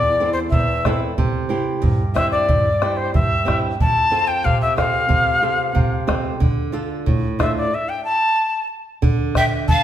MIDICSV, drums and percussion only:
0, 0, Header, 1, 2, 480
1, 0, Start_track
1, 0, Tempo, 655022
1, 859, Time_signature, 2, 2, 24, 8
1, 7206, End_track
2, 0, Start_track
2, 0, Title_t, "Bombo"
2, 382, Note_on_c, 9, 43, 70
2, 455, Note_off_c, 9, 43, 0
2, 624, Note_on_c, 9, 37, 48
2, 624, Note_on_c, 9, 43, 54
2, 697, Note_off_c, 9, 37, 0
2, 697, Note_off_c, 9, 43, 0
2, 865, Note_on_c, 9, 43, 63
2, 938, Note_off_c, 9, 43, 0
2, 1345, Note_on_c, 9, 43, 67
2, 1418, Note_off_c, 9, 43, 0
2, 1586, Note_on_c, 9, 37, 58
2, 1586, Note_on_c, 9, 43, 56
2, 1659, Note_off_c, 9, 37, 0
2, 1659, Note_off_c, 9, 43, 0
2, 1825, Note_on_c, 9, 43, 75
2, 1899, Note_off_c, 9, 43, 0
2, 2065, Note_on_c, 9, 37, 56
2, 2139, Note_off_c, 9, 37, 0
2, 2308, Note_on_c, 9, 43, 73
2, 2381, Note_off_c, 9, 43, 0
2, 2551, Note_on_c, 9, 37, 49
2, 2551, Note_on_c, 9, 43, 54
2, 2624, Note_off_c, 9, 37, 0
2, 2624, Note_off_c, 9, 43, 0
2, 2787, Note_on_c, 9, 43, 69
2, 2861, Note_off_c, 9, 43, 0
2, 3270, Note_on_c, 9, 43, 64
2, 3343, Note_off_c, 9, 43, 0
2, 3504, Note_on_c, 9, 37, 50
2, 3504, Note_on_c, 9, 43, 49
2, 3577, Note_off_c, 9, 37, 0
2, 3577, Note_off_c, 9, 43, 0
2, 3737, Note_on_c, 9, 43, 63
2, 3811, Note_off_c, 9, 43, 0
2, 4222, Note_on_c, 9, 43, 67
2, 4295, Note_off_c, 9, 43, 0
2, 4460, Note_on_c, 9, 37, 57
2, 4460, Note_on_c, 9, 43, 55
2, 4534, Note_off_c, 9, 37, 0
2, 4534, Note_off_c, 9, 43, 0
2, 4701, Note_on_c, 9, 43, 71
2, 4774, Note_off_c, 9, 43, 0
2, 5182, Note_on_c, 9, 43, 65
2, 5255, Note_off_c, 9, 43, 0
2, 5422, Note_on_c, 9, 37, 56
2, 5422, Note_on_c, 9, 43, 51
2, 5496, Note_off_c, 9, 37, 0
2, 5496, Note_off_c, 9, 43, 0
2, 6617, Note_on_c, 9, 43, 73
2, 6690, Note_off_c, 9, 43, 0
2, 6853, Note_on_c, 9, 37, 49
2, 6853, Note_on_c, 9, 43, 59
2, 6927, Note_off_c, 9, 37, 0
2, 6927, Note_off_c, 9, 43, 0
2, 7097, Note_on_c, 9, 43, 76
2, 7170, Note_off_c, 9, 43, 0
2, 7206, End_track
0, 0, End_of_file